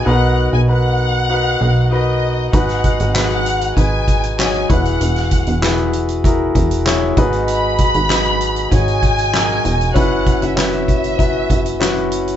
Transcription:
<<
  \new Staff \with { instrumentName = "Violin section" } { \time 4/4 \key gis \minor \tempo 4 = 97 fis''8. gis''16 fis''2 dis''4 | fis''4 fis''4 gis''4 gis''8 fis''8~ | fis''4. r2 r8 | b''2 gis''2 |
fis''8. e''16 e''2~ e''8 r8 | }
  \new Staff \with { instrumentName = "Grand piano" } { \time 4/4 \key gis \minor <dis' fis' ais' b'>8. r16 <dis' fis' ais' b'>8. r16 <dis' fis' ais' b'>8. r16 <dis' fis' ais' b'>8. r16 | <dis' fis' gis' b'>8. r16 <dis' fis' gis' b'>8. r16 <dis' fis' gis' b'>8. r16 <dis' fis' gis' cis''>8 <e' fis' gis' b'>8~ | <e' fis' gis' b'>8 r8 <e' fis' gis' b'>8. r16 <e' fis' gis' ais'>8. r16 <e' fis' gis' cis''>8 <dis' fis' gis' b'>8~ | <dis' fis' gis' b'>8 r8 <dis' fis' gis' b'>8. r16 <dis' fis' gis' cis''>8. r16 <dis' fis' gis' ais'>8. r16 |
<cis' e' fis' b'>8. r16 <cis' e' fis' b'>8. r16 <cis' e' fis' b'>8. r16 <cis' e' fis' b'>8. r16 | }
  \new Staff \with { instrumentName = "Grand piano" } { \clef bass \time 4/4 \key gis \minor b,4. r2 r8 | gis,4. r2 e8~ | e4 r2 r8 gis,8~ | gis,4 r2. |
r1 | }
  \new Staff \with { instrumentName = "Analog synth bass" } { \clef bass \time 4/4 \key gis \minor b,,8. b,,4.~ b,,16 b,,4. | gis,,8. gis,,4~ gis,,16 gis,,4. e,,8 | e,,8. e,,4.~ e,,16 e,,4 gis,,8~ | gis,,8. gis,,4~ gis,,16 gis,,4. e,,8 |
fis,,8. fis,,4.~ fis,,16 fis,,4. | }
  \new DrumStaff \with { instrumentName = "Drums" } \drummode { \time 4/4 r4 r4 r4 r4 | <hh bd>16 <hh sn>16 <hh bd>16 hh16 <hc sn>16 hh16 hh16 hh16 <hh bd>8 <hh bd>16 hh16 <hc sn>16 hh16 <hh bd>16 hh16 | hh16 <hh sn>16 <hh bd>16 hh16 <hc sn>16 hh16 hh16 hh16 <hh bd>8 <hh bd>16 hh16 <hc sn>8 <hh bd>16 hh16 | hh8 <hh bd>16 hh16 <hc sn>16 hh16 hh16 hh16 <hh bd>16 hh16 <hh bd>16 hh16 <hc sn>8 hh16 hh16 |
<hh bd>8 <hh bd>16 hh16 <hc sn>16 hh16 <hh bd>16 hh16 <hh bd>8 <hh bd>16 hh16 <hc sn>16 hh16 hh16 hh16 | }
>>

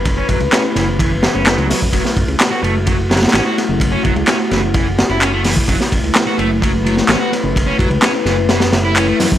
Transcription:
<<
  \new Staff \with { instrumentName = "Ambient pad" } { \time 4/4 \key fis \minor \tempo 4 = 128 << { b'1 | fis'1~ | fis'1 | b'1~ |
b'1 | } \\ { <a e'>1~ | <a e'>1~ | <a e'>1~ | <a e'>1~ |
<a e'>1 | } >> }
  \new Staff \with { instrumentName = "Distorted electric guitar" } { \time 4/4 \key fis \minor r16 cis'16 fis16 r16 cis'16 r16 e16 r16 e16 r16 e16 cis'16 a16 fis16 fis16 r16 | fis16 r4 fis'16 a16 r16 fis16 r16 fis16 r16 cis'16 fis'16 r8 | r16 cis'16 fis16 r16 cis'16 r16 e16 r16 e16 r8 e'16 cis'16 a16 e16 r16 | fis16 r4 fis'16 a16 r16 fis16 r16 fis16 r16 cis'16 fis'16 r8 |
r16 cis'16 fis16 r16 cis'16 r16 e16 r16 e16 r8 e'16 cis'16 a16 e16 r16 | }
  \new Staff \with { instrumentName = "Analog synth bass" } { \clef bass \time 4/4 \key fis \minor fis,,16 r16 fis,,16 cis,16 r8 fis,,4 r16 fis,,8 cis,16 r16 fis,16 | fis,,16 r16 fis,,16 cis,16 r8 fis,,4~ fis,,16 r16 a,,16 r8 fis,,16~ | fis,,16 r16 fis,,16 cis,16 r8 fis,,4 r16 fis,,4 r16 | fis,,16 r16 fis,,16 cis,16 r8 fis,,4~ fis,,16 r16 a,,16 r8 fis,,16~ |
fis,,16 r16 fis,,16 cis,16 r8 fis,,4 fis,,8. r16 fis,16 fis,16 | }
  \new DrumStaff \with { instrumentName = "Drums" } \drummode { \time 4/4 <bd cymr>8 <bd cymr>16 cymr16 <hc cymr sn>8 <cymr sn>8 <bd cymr>8 <cymr sn>8 <hc cymr sn>16 cymr16 <hho sn>16 bd16 | <bd cymr>16 sn16 <bd cymr>16 cymr16 <hc cymr sn>8 cymr8 <bd cymr>8 <cymr sn>32 <cymr sn>32 <cymr sn>32 <cymr sn>32 <hc cymr sn>8 <cymr sn>8 | <bd cymr>8 <bd cymr>16 cymr16 <hc cymr sn>8 <cymr sn>8 <bd cymr>8 <cymr sn>8 <hc cymr>8 <hho sn>16 bd16 | <bd cymr>16 sn16 <bd cymr>16 cymr16 <hc cymr sn>8 cymr8 <bd cymr>8 cymr16 sn16 <hc cymr sn>8 <cymr sn>8 |
<bd cymr>8 <bd cymr>16 cymr16 <hc cymr sn>8 <cymr sn>8 <cymr sn>16 <cymr sn>16 <cymr sn>8 <hc cymr>8 <hho sn>16 bd16 | }
>>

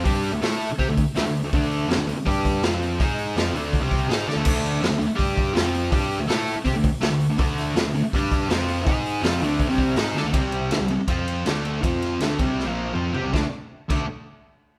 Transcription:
<<
  \new Staff \with { instrumentName = "Distorted electric guitar" } { \time 4/4 \key d \minor \tempo 4 = 163 <g d' g'>8. <d a>16 <a e' a'>8. r16 <c' g'>16 <d a>8 r16 <d a>16 <d a>8 <d a>16 | <d a d'>4 <f c'>16 <d a>16 <d a>16 r16 <g d' g'>4 <f c' f'>4 | <gis dis' gis'>4 <f c' f'>8 <d a d'>8. <c g c'>8. <gis ees' gis'>8 <d' a'>16 <d a>16 | <d a d'>4 <f c'>16 <d a>16 <d a>16 r16 <g d' g'>4 <f c' f'>4 |
<g d' g'>8. <d a>16 <a e' a'>8. r16 <c' g'>16 <d a>8 r16 <d a>16 <d a>8 <d a>16 | <d a d'>4 <f c'>16 <d a>16 <d a>16 r16 <g d' g'>4 <f c' f'>4 | <gis dis' gis'>4 <f c' f'>8 <d a d'>8. <c g c'>8. <gis ees' gis'>8 <d' a'>16 <d a>16 | <c g c'>4 <d a>16 <c g>16 <c g>16 r16 <f c' f'>4 <d a d'>4 |
<f c' f'>4 <d a d'>8 <c g c'>8. <bes, f bes>8. <f c' f'>8 <c' g'>16 <c g>16 | <d a d'>16 r4 r16 <d a d'>8 r2 | }
  \new Staff \with { instrumentName = "Picked electric bass" } { \clef bass \time 4/4 \key d \minor g,8. d,16 a,8. r16 c16 d,8 r16 d,16 d,8 d,16 | d,4 f,16 d,16 d,16 r16 g,4 f,4 | gis,4 f,8 d,8. c,8. gis,8 d16 d,16 | d,4 f,16 d,16 d,16 r16 g,4 f,4 |
g,8. d,16 a,8. r16 c16 d,8 r16 d,16 d,8 d,16 | d,4 f,16 d,16 d,16 r16 g,4 f,4 | gis,4 f,8 d,8. c,8. gis,8 d16 d,16 | c,4 d,16 c,16 c,16 r16 f,4 d,4 |
f,4 d,8 c,8. bes,,8. f,8 c16 c,16 | d,16 r4 r16 d,8 r2 | }
  \new DrumStaff \with { instrumentName = "Drums" } \drummode { \time 4/4 <hho bd>8 hho8 <hho sn>8 hho8 <hho bd>8 <hho bd>8 <hho sn>8 hho8 | <hho bd>8 hho8 <hho sn>8 hho8 <hho bd>8 <hho bd>8 <hho sn>8 hho8 | <hho bd>8 hho8 <hho sn>8 hho8 <hho bd>8 <hho bd>8 <hho sn>8 sn8 | <cymc bd>8 hho8 <hho sn>8 hho8 <hho bd>8 <hho bd>8 <hho sn>8 hho8 |
<hho bd>8 hho8 <hho sn>8 hho8 <hho bd>8 <hho bd>8 <hho sn>8 hho8 | <hho bd>8 <hho sn>8 <hho sn>8 hho8 <hho bd>8 <hho bd>8 <hho sn>16 sn16 hho8 | <hho bd>8 hho8 <hho sn>8 hho8 <hho bd>8 <hho bd>8 <hho sn>8 sn8 | <bd cymr>8 cymr8 <cymr sn>8 cymr8 <bd cymr>8 cymr8 <cymr sn>8 cymr8 |
<bd cymr>8 <cymr sn>8 <cymr sn>8 <bd cymr>8 sn4 toml8 tomfh8 | <bd sn>4 r8 <cymc bd>8 r4 r4 | }
>>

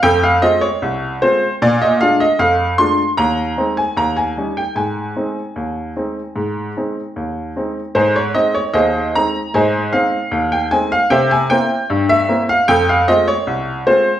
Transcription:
<<
  \new Staff \with { instrumentName = "Upright piano" } { \time 2/4 \key aes \major \tempo 4 = 76 g''16 f''16 ees''16 des''8. c''8 | d''16 ees''16 f''16 ees''16 f''8 c'''8 | bes''8. aes''16 bes''16 aes''8 g''16 | aes''2~ |
aes''4 r4 | <ees' aes' c''>16 des''16 ees''16 des''16 <aes' c'' ees''>8 bes''8 | <c'' ees'' aes''>8 f''8. g''16 aes''16 f''16 | <c'' e'' g''>16 aes''16 g''8. e''8 f''16 |
g''16 f''16 ees''16 des''8. c''8 | }
  \new Staff \with { instrumentName = "Upright piano" } { \time 2/4 \key aes \major f,8 <aes c' f'>8 c,8 <aes c' f'>8 | bes,8 <aes d' f'>8 f,8 <aes d' f'>8 | ees,8 <aes c' ees'>8 ees,8 <g des' ees'>8 | aes,8 <aes c' ees'>8 ees,8 <aes c' ees'>8 |
aes,8 <aes c' ees'>8 ees,8 <aes c' ees'>8 | aes,8 <aes c' ees'>8 ees,8 <aes c' ees'>8 | aes,8 <aes c' ees'>8 ees,8 <aes c' ees'>8 | c8 <bes c' e'>8 g,8 <bes c' e'>8 |
f,8 <aes c' f'>8 c,8 <aes c' f'>8 | }
>>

